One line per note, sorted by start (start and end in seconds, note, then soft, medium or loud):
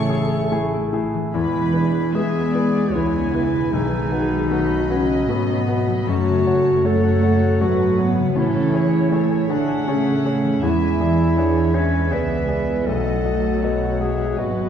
0.00 1.09 A1 medium
0.00 1.35 A2 medium
0.00 1.36 A2 medium
0.00 0.52 C#3 medium
0.00 1.13 E3 soft
0.00 0.52 A3 medium
0.00 0.92 A3 medium
0.00 1.08 A3 medium
0.00 0.09 E4 medium
0.00 0.72 E4 medium
0.00 0.10 G#4 medium
0.00 0.51 G#4 medium
0.00 1.12 A4 medium
0.00 1.37 A4 medium
0.00 0.51 C#5 medium
0.00 0.31 E5 medium
0.00 0.51 C#6 medium
0.09 0.47 E4 soft
0.09 0.47 G#4 medium
0.09 3.76 G#5 medium
0.32 3.76 E5 medium
0.52 0.89 A3 medium
0.52 0.89 E4 soft
0.52 2.14 G#4 medium
0.52 0.89 G#4 medium
0.73 3.76 E4 medium
0.93 1.37 A3 medium
0.93 1.29 E4 soft
0.93 1.30 G#4 medium
1.14 1.37 E3 soft
1.33 1.73 E2 medium
1.33 2.91 E2 medium
1.33 3.76 E2 medium
1.33 2.10 E3 medium
1.33 2.10 G#3 medium
1.33 2.16 E4 medium
1.33 2.11 B4 medium
1.33 2.10 B5 medium
1.54 3.53 B2 soft
1.73 3.14 D4 soft
1.73 2.10 E4 soft
1.73 2.10 B4 soft
1.94 2.93 B4 soft
2.13 2.94 G#3 medium
2.13 2.51 G#3 soft
2.13 2.93 B3 medium
2.13 2.51 E4 soft
2.13 2.96 G#4 medium
2.13 3.76 G#4 soft
2.13 2.51 B4 soft
2.13 2.54 E5 medium
2.13 2.93 G#5 medium
2.53 2.91 E4 soft
2.53 2.91 B4 soft
2.53 2.94 D5 medium
2.53 4.88 B5 soft
2.93 3.73 C#2 medium
2.93 3.72 E3 medium
2.93 3.30 G#3 soft
2.93 3.71 B3 medium
2.93 3.74 E4 medium
2.93 3.30 E4 soft
2.93 4.30 B4 soft
2.93 3.31 B4 soft
2.93 3.33 C#5 medium
2.93 4.47 G#5 medium
3.16 3.76 D4 soft
3.33 3.76 G#3 soft
3.33 3.69 E4 soft
3.33 3.72 B4 medium
3.33 3.69 B4 soft
3.54 3.72 B2 soft
3.73 5.25 B1 medium
3.73 4.11 B1 medium
3.73 6.11 B2 medium
3.73 4.89 D#3 medium
3.73 4.49 G#3 medium
3.73 4.92 D#4 medium
3.73 4.49 B4 medium
3.92 5.86 F#3 soft
4.12 4.47 F#4 soft
4.12 5.47 F#4 soft
4.12 4.47 B4 soft
4.32 5.27 B4 soft
4.50 6.07 F#3 medium
4.50 4.86 A3 soft
4.50 4.86 F#4 soft
4.50 6.84 A4 medium
4.50 4.86 B4 soft
4.50 6.08 D#5 medium
4.50 5.27 B5 medium
4.70 5.08 F#5 soft
4.89 5.28 C#3 medium
4.89 5.30 C#4 medium
4.89 5.25 F#4 soft
4.89 5.25 B4 soft
4.89 6.11 B5 soft
5.09 7.03 F#5 soft
5.28 6.07 G#1 medium
5.28 6.06 B2 medium
5.28 5.64 A3 soft
5.28 6.08 B3 medium
5.28 5.64 F#4 soft
5.28 6.11 B4 medium
5.28 5.64 B4 soft
5.28 6.06 B5 medium
5.48 6.46 F#4 soft
5.68 7.97 A3 soft
5.68 6.04 F#4 soft
5.68 6.04 B4 soft
5.87 8.39 F#3 soft
6.07 7.60 F#1 medium
6.07 6.45 F#2 medium
6.07 8.40 F#2 medium
6.07 6.85 F#3 medium
6.07 7.58 A3 medium
6.07 6.87 F#4 medium
6.07 6.84 C#5 medium
6.07 6.85 A5 medium
6.28 8.16 C#3 soft
6.47 6.81 F#4 soft
6.47 7.78 F#4 medium
6.47 6.81 C#5 soft
6.67 7.60 C#5 medium
6.84 7.19 A3 soft
6.84 7.60 A3 medium
6.84 7.19 F#4 soft
6.84 9.11 A4 medium
6.84 7.63 A4 medium
6.84 7.59 C#5 medium
6.84 7.19 C#5 medium
6.84 7.58 F#5 medium
7.04 7.40 F#5 medium
7.22 7.56 F#4 soft
7.22 7.56 C#5 soft
7.22 9.48 C#6 medium
7.41 8.39 F#5 medium
7.59 8.36 G#1 medium
7.59 8.37 F#3 medium
7.59 7.98 A3 medium
7.59 7.95 A3 soft
7.59 8.10 F#4 medium
7.59 7.95 F#4 soft
7.59 8.37 B4 medium
7.59 8.92 C#5 medium
7.59 7.95 C#5 soft
7.59 8.34 F#5 medium
7.79 8.39 F#4 soft
7.98 10.23 A3 medium
7.98 8.36 B3 medium
7.98 8.33 F#4 soft
7.98 8.33 C#5 soft
8.17 8.39 C#3 soft
8.35 10.58 A1 medium
8.35 8.73 A2 medium
8.35 10.65 A2 medium
8.35 9.47 E3 medium
8.35 9.11 C#4 medium
8.35 9.45 E4 medium
8.35 8.73 A4 medium
8.35 9.09 C#5 medium
8.55 10.42 E3 soft
8.74 9.07 G#4 soft
8.74 10.04 G#4 medium
8.74 9.08 C#5 soft
8.74 9.11 C#5 medium
8.93 9.86 C#5 soft
9.11 9.86 A3 medium
9.11 9.46 A3 soft
9.11 9.46 G#4 soft
9.11 10.66 A4 medium
9.11 9.49 C#5 medium
9.11 9.46 C#5 medium
9.11 10.62 E5 medium
9.31 9.66 G#5 soft
9.49 9.87 D3 medium
9.49 9.90 D4 medium
9.49 9.83 G#4 soft
9.49 9.84 C#5 soft
9.49 10.63 F#5 medium
9.49 10.66 C#6 medium
9.68 11.55 G#5 medium
9.86 10.62 C#3 medium
9.86 10.61 A3 medium
9.86 10.22 A3 soft
9.86 10.64 C#4 medium
9.86 10.22 G#4 soft
9.86 10.66 C#5 medium
9.86 10.22 C#5 soft
10.05 10.99 G#4 soft
10.25 10.65 A3 soft
10.25 10.59 G#4 soft
10.25 10.59 C#5 soft
10.43 10.61 E3 soft
10.62 12.09 E2 medium
10.62 10.99 E2 medium
10.62 11.75 E3 medium
10.62 12.90 E3 medium
10.62 11.36 G#3 medium
10.62 11.76 E4 medium
10.62 11.38 E5 medium
10.62 11.00 G#5 medium
10.81 12.68 E4 soft
11.00 12.29 G#4 soft
11.00 11.34 G#4 soft
11.00 11.34 D5 soft
11.00 12.87 E5 medium
11.19 12.90 E5 soft
11.37 12.84 G#3 medium
11.37 11.71 B3 soft
11.37 11.72 D4 soft
11.37 11.71 G#4 soft
11.37 13.61 B4 soft
11.37 11.75 C#5 medium
11.57 11.93 G#5 medium
11.74 12.11 C#4 medium
11.74 12.08 G#4 soft
11.74 12.11 B4 medium
11.74 12.13 C#5 medium
11.74 12.08 E5 soft
11.74 12.90 B5 medium
11.94 12.91 G#5 soft
12.11 12.87 C#2 medium
12.11 12.45 B3 soft
12.11 12.87 B3 medium
12.11 12.45 G#4 soft
12.11 12.88 B4 medium
12.11 12.45 D5 soft
12.11 12.90 D5 soft
12.11 12.87 E5 medium
12.31 12.90 G#4 soft
12.48 14.69 B3 soft
12.48 12.83 G#4 soft
12.48 12.83 D5 soft
12.69 12.91 E4 soft
12.85 13.24 B1 medium
12.85 14.35 B1 medium
12.85 14.69 B2 medium
12.85 14.35 F#3 medium
12.85 14.00 A3 medium
12.85 14.00 A4 medium
12.85 13.60 D#5 soft
12.85 13.62 F#5 medium
13.06 14.69 F#3 soft
13.25 14.55 F#4 soft
13.25 13.59 F#4 soft
13.25 13.59 D#5 soft
13.62 13.97 B3 soft
13.62 13.97 F#4 soft
13.62 14.69 B4 soft
13.62 14.37 C#5 soft
13.62 13.97 D#5 soft
13.62 14.00 F#5 medium
13.81 14.17 F#5 soft
13.99 14.38 G#3 medium
13.99 14.34 F#4 soft
13.99 14.40 G#4 medium
13.99 14.37 E5 soft
13.99 14.34 F#5 soft
13.99 14.69 D#6 soft
14.18 14.69 F#5 soft
14.37 14.69 G#1 soft
14.37 14.69 F#3 medium
14.37 14.69 B3 soft
14.37 14.69 F#4 soft
14.37 14.69 F#4 medium
14.37 14.69 B4 soft
14.37 14.69 D#5 soft
14.56 14.69 F#4 soft